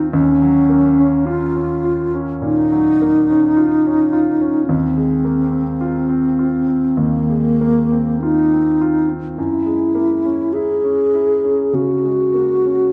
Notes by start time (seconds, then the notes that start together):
Already playing: A#3 C4 D#4 F4
0.12 D#2 C#4
0.42 F#3
0.69 A#3
0.98 C#4
1.27 F4
1.56 C#4
1.84 F4
2.14 C#4
2.42 A#2 D#4
2.72 F#3
3.02 A#3
3.30 C#4
3.57 F4
3.87 C#4
4.13 F4
4.41 C#4
4.66 D#2 C4
4.97 G#3
5.25 A#3
5.51 C4
5.81 F4
6.09 C4
6.39 F4
6.67 C4
6.97 D#2 A#3
7.29 G#3
7.61 A#3
7.92 C4
8.22 D#4 F4
8.53 C4
8.81 F4
9.09 C4
9.36 F#2 E4
9.66 G#3
9.95 A#3
10.25 C#4
10.53 E4 G#4
10.84 C#4
11.14 E4
11.44 C#4
11.73 C#3 F#4
12.05 G#3
12.34 A#3
12.66 C#4